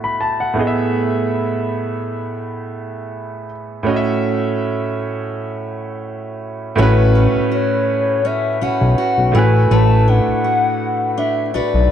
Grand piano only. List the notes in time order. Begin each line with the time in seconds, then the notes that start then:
Already playing: A2 A3 B3 F#4 E5
0.04 B5
0.21 A5
0.40 F#5
0.54 A2 A3 B3
0.59 G#4 D#5
0.67 E5
3.83 A2 A3 C#4
3.88 F#4 D#5
3.96 E5
6.76 A2 A3 C#4
6.81 F#4 B4
9.32 A2 A3 E4
9.37 F#4 B4